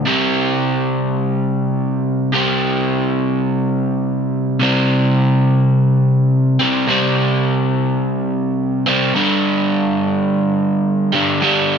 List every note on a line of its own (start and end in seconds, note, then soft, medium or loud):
0.06 2.31 C3 medium
0.06 2.33 G3 medium
0.06 2.35 C4 medium
2.33 4.59 C3 medium
2.33 4.59 G3 medium
2.33 4.60 C4 medium
4.60 6.57 C3 medium
4.60 6.61 G3 medium
4.60 6.58 C4 medium
6.59 6.86 C3 soft
6.59 6.88 G3 medium
6.59 6.86 C4 medium
6.87 8.85 C3 medium
6.87 8.87 G3 medium
6.87 8.85 C4 medium
8.86 9.14 C3 medium
8.86 9.16 G3 medium
8.86 9.13 C4 medium
9.14 11.12 G2 medium
9.14 11.13 D3 medium
9.14 11.13 G3 medium
11.13 11.40 G2 medium
11.13 11.41 D3 medium
11.13 11.44 G3 medium
11.41 11.78 G2 medium
11.41 11.78 D3 medium
11.41 11.78 G3 medium